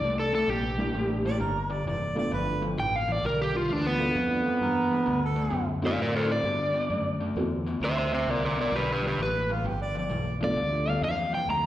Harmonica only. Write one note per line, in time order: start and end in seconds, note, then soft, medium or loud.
1.26 1.39 D5 medium
1.40 1.74 A#4 medium
1.72 1.86 D5 medium
1.87 2.16 D5 medium
2.18 2.32 D5 medium
2.33 2.69 B4 medium
4.62 5.21 A#4 medium
5.25 5.68 A4 medium
9.51 9.68 F4 medium
9.67 9.81 G4 medium
9.82 9.96 D5 medium
9.98 10.36 D5 medium